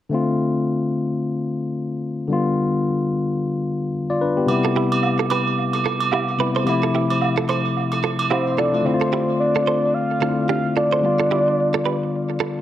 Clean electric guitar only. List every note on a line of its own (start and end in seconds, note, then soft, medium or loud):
4.65 4.72 F4 medium
4.65 4.72 A4 medium
4.76 4.87 E4 medium
4.76 4.86 G4 medium
5.19 5.27 F4 medium
5.19 5.26 A4 medium
5.31 5.41 G4 medium
5.31 5.41 B4 medium
5.86 5.96 F4 medium
5.86 5.95 A4 medium
6.13 6.23 E4 medium
6.13 6.23 G4 medium
6.40 6.50 G4 medium
6.40 6.50 B4 medium
6.56 6.63 A4 medium
6.56 6.63 C5 medium
6.83 6.91 F4 medium
6.83 6.90 A4 medium
6.95 7.05 E4 medium
6.95 7.05 G4 medium
7.38 7.45 F4 medium
7.38 7.45 A4 medium
7.49 7.60 A4 medium
7.49 7.59 C5 medium
8.04 8.14 F4 medium
8.04 8.14 A4 medium
8.31 8.41 E4 medium
8.31 8.41 G4 medium
8.58 8.69 F4 medium
8.58 8.68 A4 medium
9.01 9.09 F4 medium
9.01 9.08 A4 medium
9.13 9.23 E4 medium
9.13 9.23 G4 medium
9.56 9.63 F4 medium
9.56 9.63 A4 medium
9.67 9.78 A4 medium
9.67 9.77 C5 medium
10.22 10.32 F4 medium
10.22 10.32 A4 medium
10.49 10.60 D4 medium
10.49 10.59 G4 medium
10.77 10.87 F4 medium
10.77 10.86 A4 medium
10.92 11.00 A4 medium
10.92 10.99 C5 medium
11.20 11.27 F4 medium
11.20 11.27 A4 medium
11.31 11.41 E4 medium
11.31 11.41 G4 medium
11.74 11.82 F4 medium
11.74 11.81 A4 medium
11.86 11.96 G4 medium
11.86 11.95 B4 medium
12.40 12.50 F4 medium
12.40 12.50 A4 medium